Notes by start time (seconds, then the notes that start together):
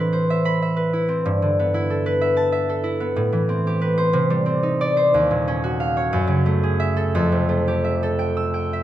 Already playing: A2 E3 C4 E4 E5 B5
0.00 B4
0.13 C5
0.30 E5
0.45 B5
0.62 E5
0.76 B4
0.93 E4
1.08 C4
1.26 G2
1.42 D3
1.59 B3
1.74 E4
1.90 A4
2.06 B4
2.21 E5
2.37 A5
2.52 E5
2.69 A4
2.84 E4
3.00 B3
3.16 A2
3.33 E3
3.49 C4
3.67 G4
3.81 B4
3.98 C5
4.13 C3
4.30 G3
4.46 C4
4.63 D#4
4.81 D5
4.97 C5
5.14 D#2
5.31 A#2
5.48 C#4
5.64 F#4
5.80 F5
5.97 C#5
6.13 F#2
6.27 C#3
6.46 A3
6.63 G#4
6.80 E5
6.97 A4
7.15 F2
7.32 C3
7.49 A3
7.68 G4
7.84 E5
8.03 A4
8.19 G5
8.37 E6
8.54 G5
8.73 E5